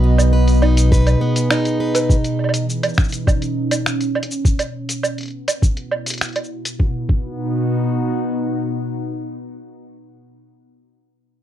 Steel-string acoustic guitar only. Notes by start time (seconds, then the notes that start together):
Already playing: B2 B3 B4
0.04 D#4
0.33 B4
0.63 D#4
0.92 B4
1.21 B3
1.50 D#4
1.80 B4